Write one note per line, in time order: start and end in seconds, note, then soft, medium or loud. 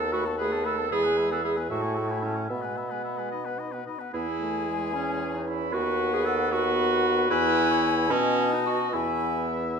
0.00 0.88 D#2 medium
0.00 0.15 B3 medium
0.00 0.12 A4 medium
0.00 0.14 A4 medium
0.00 0.14 A5 medium
0.13 0.28 A3 medium
0.13 0.25 F#4 medium
0.13 0.27 B4 medium
0.13 0.28 B5 medium
0.25 0.39 B3 medium
0.25 0.37 A4 medium
0.25 0.39 A5 medium
0.38 0.54 A3 medium
0.38 0.67 G#4 medium
0.38 0.54 B4 medium
0.38 0.55 B5 medium
0.52 0.67 B3 medium
0.52 0.66 A4 medium
0.52 0.67 A5 medium
0.65 0.80 A3 medium
0.65 0.91 A4 medium
0.65 0.79 B4 medium
0.65 0.80 B5 medium
0.78 0.91 B3 medium
0.78 0.90 A4 soft
0.78 0.91 A5 medium
0.90 1.72 E2 medium
0.90 1.07 G#3 medium
0.90 1.30 G#4 loud
0.90 1.05 E5 medium
0.90 1.06 B5 medium
1.03 1.20 B3 medium
1.03 1.19 B4 medium
1.03 1.19 G#5 medium
1.18 1.33 G#3 medium
1.18 1.33 E5 medium
1.18 1.33 B5 medium
1.31 1.43 B3 medium
1.31 1.44 A4 medium
1.31 1.43 B4 medium
1.31 1.43 G#5 medium
1.43 1.59 G#3 soft
1.43 1.56 G#4 medium
1.43 1.58 E5 medium
1.43 1.58 B5 soft
1.56 1.70 B3 medium
1.56 1.69 B4 soft
1.56 1.70 G#5 medium
1.69 2.49 A2 medium
1.69 1.85 G#3 medium
1.69 2.12 F#4 medium
1.69 1.84 E5 medium
1.69 1.85 A5 medium
1.82 1.98 A3 medium
1.82 1.97 C#5 soft
1.82 1.99 G#5 soft
1.95 2.11 G#3 soft
1.95 2.10 E5 soft
1.95 2.12 A5 medium
2.08 2.23 A3 soft
2.08 2.24 E4 medium
2.08 2.20 C#5 soft
2.08 2.23 G#5 medium
2.20 2.38 G#3 soft
2.20 2.49 C#4 medium
2.20 2.37 E5 soft
2.20 2.39 A5 soft
2.35 2.49 A3 soft
2.35 2.48 C#5 soft
2.35 2.50 G#5 soft
2.48 3.84 B2 medium
2.48 2.65 B3 soft
2.48 3.84 B3 medium
2.48 2.63 E5 soft
2.48 2.66 B5 soft
2.62 2.79 G#3 soft
2.62 2.78 B4 soft
2.62 2.79 G#5 soft
2.77 2.93 B3 soft
2.77 2.92 E5 soft
2.77 2.93 B5 soft
2.90 3.04 G#3 soft
2.90 3.03 B4 soft
2.90 3.04 G#5 soft
3.04 3.20 B3 soft
3.04 3.20 E5 soft
3.04 3.21 B5 soft
3.18 3.31 G#3 soft
3.18 3.31 B4 soft
3.18 3.32 G#5 soft
3.32 3.47 D#4 soft
3.32 3.47 D#5 soft
3.32 3.48 B5 soft
3.45 3.60 B3 soft
3.45 3.60 B4 soft
3.45 3.62 F#5 soft
3.59 3.74 D#4 soft
3.59 3.74 D#5 soft
3.59 3.75 B5 soft
3.72 3.86 B3 soft
3.72 3.86 B4 soft
3.72 3.87 F#5 soft
3.86 4.01 D#4 soft
3.86 4.01 D#5 soft
3.86 4.03 B5 soft
3.99 4.12 B3 soft
3.99 4.13 B4 soft
3.99 4.13 F#5 soft
4.13 5.74 E2 medium
4.13 4.25 B3 medium
4.13 4.90 E4 medium
4.13 5.56 G#4 medium
4.13 5.46 G#5 medium
4.41 4.69 A3 medium
4.68 4.95 G#3 medium
4.93 5.75 C#4 medium
4.93 5.36 C#4 medium
5.35 5.48 D#4 medium
5.47 5.75 E4 loud
5.73 7.29 D#2 medium
5.73 6.51 B3 medium
5.73 6.15 F#4 loud
5.73 6.50 B4 medium
5.73 6.51 F#5 medium
6.13 6.26 G#4 loud
6.25 6.53 A4 loud
6.51 7.29 B3 medium
6.51 7.30 F#4 loud
6.51 7.29 B4 medium
6.51 7.29 F#5 medium
7.30 8.12 E2 medium
7.30 8.07 B3 loud
7.30 8.12 E4 loud
7.30 7.68 B4 medium
7.30 8.13 G#5 medium
7.71 8.10 C#5 medium
8.10 8.94 B2 medium
8.10 8.92 B3 medium
8.10 8.54 C#4 loud
8.10 8.95 D#5 medium
8.10 8.93 A5 medium
8.53 8.65 D#4 medium
8.66 8.95 F#4 loud
8.93 9.80 E2 medium
8.93 9.80 B3 medium
8.93 9.77 E4 medium
8.93 9.80 E5 medium
8.93 9.47 G#5 medium